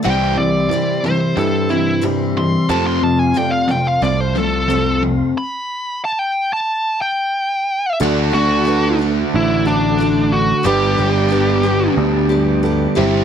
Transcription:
<<
  \new Staff \with { instrumentName = "Lead electric guitar" } { \time 4/4 \key g \major \tempo 4 = 90 g''8 d''4 c''8 a'8 e'8 r8 c'''8 | a''16 c'''16 a''16 gis''16 g''16 f''16 g''16 f''16 d''16 c''16 a'4 r8 | b''4 a''16 g''8 a''8. g''4. | r8 fis'4 r8 e'8 d'4 fis'8 |
g'2 r2 | }
  \new Staff \with { instrumentName = "Tonewheel organ" } { \time 4/4 \key g \major << { c'''1~ | c'''1 | r1 | d'''1~ |
d'''2.~ d'''8 r8 | } \\ { <g' e''>1 | <a' f''>1 | r1 | <a' fis''>1 |
<b' g''>2.~ <b' g''>8 <g e''>8 | } >> }
  \new Staff \with { instrumentName = "Reed electric piano" } { \time 4/4 \key g \major <e' g' c''>8 r8 <e' g' c''>8 r8 <e' g' c''>8 r8 <e' g' c''>8 r8 | <f' a' c''>8 r8 <f' a' d''>8 r8 <f' a' c''>8 r8 <f' a' c''>8 r8 | r1 | <a d' fis' a'>8 r8 <a d' fis' b'>8 r8 <a d' fis' c''>8 r8 <a d' fis' a'>8 r8 |
<b d' g' b'>8 r8 <b d' g' b'>8 r8 <b d' g' b'>8 r8 <b d' g' a'>8 <c' e' g' c''>8 | }
  \new Staff \with { instrumentName = "Steel-string acoustic guitar" } { \time 4/4 \key g \major <c e g c' e'>4 <c e g c' e'>8 <g c' e'>8 <e g c' e'>8 <g c' e'>8 <c e g c' e'>4 | <f, c f a c' f'>4 <f, c f a c' f'>8 <f a c' f'>8 <f a c' f'>8 <f a c' f'>8 <f, c f a c' f'>4 | r1 | <d a d' fis'>8 <a d' fis'>8 <d a d' fis'>8 <a d' fis'>4 <a d' fis'>8 <d a d' fis'>4 |
<g, d g b d' g'>8 <g b d' g'>8 <g b d' g'>8 <g b d' g'>4 <g b d' g'>8 <g b d' g'>8 <g c' e' g'>8 | }
  \new Staff \with { instrumentName = "Overdriven electric guitar" } { \clef bass \time 4/4 \key g \major <c e g>8 <c e>8 <c e>8 <c e>8 <c e>8 <c e>8 <c e>8 <c e>8 | <f, c f>8 <f, c>8 <f, c>8 <f, c>8 <f, c>8 <f, c>8 <f, c>8 <f, c>8 | r1 | <d a d' fis'>1 |
<g, d g b d' g'>2.~ <g, d g b d' g'>8 <g c' e' g'>8 | }
  \new Staff \with { instrumentName = "Picked electric bass" } { \clef bass \time 4/4 \key g \major c,8 c,8 r4 g,2 | f,8 f,8 r4 c,2 | r1 | d,8 d,4. a,,2 |
g,,8 g,,4. d,4. g,,8 | }
>>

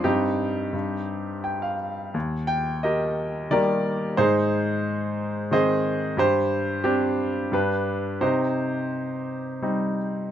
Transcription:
<<
  \new Staff \with { instrumentName = "Grand piano" } { \time 3/4 \key c \minor \tempo 4 = 87 << { r2 g''16 f''8. | r2. | r2. | r2. |
r2. | } \\ { <c' ees' g'>2~ <c' ees' g'>8 r8 | r8 g''8 <g' bes' ees''>4 <g' bes' d''>4 | <ees' aes' c''>2 <aes' c'' ees''>4 | <g' c''>4 <c' d' g'>4 <d' g' b'>4 |
<ees' g' c''>2~ <ees' g' c''>8 r8 | } >> }
  \new Staff \with { instrumentName = "Grand piano" } { \clef bass \time 3/4 \key c \minor g,4 g,2 | ees,2 <ees g bes>4 | aes,2 <ees aes c'>4 | g,2 g,4 |
c2 <g c' ees'>4 | }
>>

